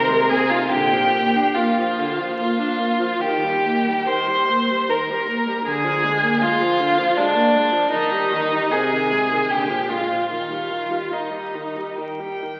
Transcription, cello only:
0.00 0.57 C3 medium
0.71 1.41 A#2 medium
3.21 3.93 D#3 medium
5.67 6.30 D3 medium
7.93 8.59 D#3 medium
8.72 9.37 C3 medium
9.51 10.17 A#2 medium
10.31 10.99 D#3 soft

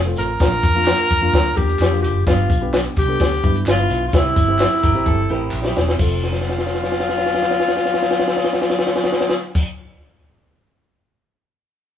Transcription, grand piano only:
0.05 0.29 A3 medium
0.05 0.29 C4 medium
0.05 0.29 F4 medium
0.40 0.64 A#3 medium
0.40 0.64 D4 medium
0.40 0.64 F4 medium
0.75 1.07 A#3 medium
0.75 1.07 D4 medium
0.75 1.07 F4 loud
1.21 1.45 A#3 medium
1.21 1.45 D4 medium
1.21 1.46 F4 loud
1.56 1.80 A#3 medium
1.56 1.80 D4 medium
1.56 1.80 G4 medium
1.91 2.15 A#3 medium
1.91 2.15 D4 medium
1.91 2.15 F4 medium
2.27 2.51 B3 medium
2.27 2.51 D4 medium
2.27 2.51 G4 medium
2.61 2.93 B3 medium
2.61 2.93 D4 medium
2.61 2.93 G4 medium
3.08 3.32 B3 medium
3.08 3.32 D4 medium
3.08 3.32 A4 medium
3.43 3.67 B3 medium
3.43 3.67 D4 medium
3.43 3.67 E4 medium
3.78 4.02 B3 medium
3.78 4.02 D4 medium
3.78 4.02 E4 medium
4.13 4.37 C4 medium
4.13 4.37 E4 medium
4.13 4.37 G4 medium
4.48 4.80 C4 medium
4.48 4.80 E4 medium
4.48 4.80 G4 medium
4.94 5.18 C4 medium
4.94 5.18 E4 medium
4.94 5.19 G4 medium
5.30 5.53 C4 medium
5.30 5.54 E4 medium
5.30 5.54 A#4 medium
5.65 5.89 C4 medium
5.65 5.89 E4 medium
5.65 5.89 G4 medium
5.97 9.59 C4 medium
5.97 9.60 F4 medium
6.01 9.61 A4 medium

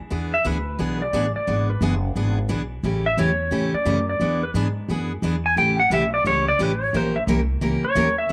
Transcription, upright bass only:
0.11 0.44 E2 medium
0.45 0.78 D2 medium
0.79 1.12 B1 medium
1.13 1.34 A1 medium
1.36 muted upright bass stroke soft
1.47 1.80 G#1 medium
1.81 2.14 F#1 medium
2.15 2.49 G#1 medium
2.49 2.83 B1 medium
2.83 3.17 A1 medium
3.17 3.51 E2 medium
3.51 3.72 A2 medium
3.73 muted upright bass stroke soft
3.85 4.19 F#2 medium
4.20 4.53 E2 medium
4.54 4.87 G#2 loud
4.88 5.22 F#2 medium
5.22 5.56 E2 medium
5.56 5.90 A1 medium
5.90 6.24 B1 medium
6.24 6.58 C#2 medium
6.59 6.92 A1 medium
6.93 7.26 A#1 medium
7.27 7.60 C2 medium
7.61 7.82 C#2 medium
7.83 muted upright bass stroke soft
7.95 8.29 D#2 medium

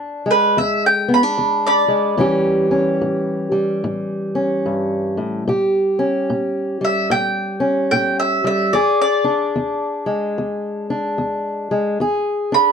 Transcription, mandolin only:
0.31 0.57 B4 medium
0.58 0.84 E5 medium
0.86 1.12 G5 medium
1.14 1.66 B5 medium
1.66 2.17 D5 medium
1.66 4.08 B5 medium
6.85 7.11 E5 medium
7.11 7.90 G5 medium
7.91 8.18 G5 medium
8.20 8.46 E5 medium
8.47 8.73 E5 medium
8.73 9.00 D5 medium
9.02 10.60 D5 medium
12.54 12.72 B5 medium

